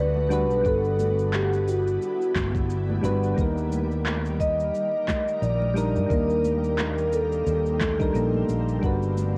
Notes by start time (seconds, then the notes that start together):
Already playing: D2 D3 G3 B3 D4 F#4 B4
0.17 high conga
0.29 G3 D4 F#4 B4, cabasa
0.50 B1, cabasa
0.61 G1 G3 D4 E4, kick
0.65 A4 B4 F#5, cabasa
0.85 cabasa
0.99 high conga, cabasa
1.19 cabasa
1.33 G4, clap, high conga, cabasa
1.53 cabasa
1.68 F#4, cabasa
1.87 cabasa
2.02 cabasa
2.22 cabasa
2.35 G1, kick, clap, high conga, low conga, cabasa
2.55 kick, cabasa
2.70 cabasa
2.90 high conga
3.01 G1 G3 D4 F#4 B4, cabasa
3.23 cabasa
3.34 D#2 D#3 G3 A#3 A#4, kick, cabasa
3.39 D#4 A#4
3.58 cabasa
3.72 high conga, cabasa
3.91 cabasa
4.06 clap, high conga, cabasa
4.25 cabasa
4.40 D#5, kick, cabasa
4.60 cabasa
4.75 cabasa
5.08 kick, clap, high conga, low conga, cabasa
5.28 cabasa
5.42 A#1 D5, cabasa
5.62 high conga
5.74 G3 D4 D#4 A#4, cabasa
5.96 G2, cabasa
6.06 D#2 G3 D4 A#4, kick
6.11 A#3 C4 D#4, cabasa
6.30 cabasa
6.44 high conga, cabasa
6.64 cabasa
6.78 clap, high conga, cabasa
6.98 cabasa
7.13 A4, cabasa
7.32 cabasa
7.47 D#2, cabasa
7.66 cabasa
7.81 kick, clap, high conga, low conga, cabasa
7.98 G3 D4 D#4 A#4, kick, cabasa
8.13 A#1 G3 A#3 D4 D#4, cabasa
8.34 high conga
8.49 A#1, cabasa
8.69 cabasa
8.79 G1 D3 G3 B3 D4, kick
8.83 F#4 B4, cabasa
9.03 cabasa
9.18 high conga, cabasa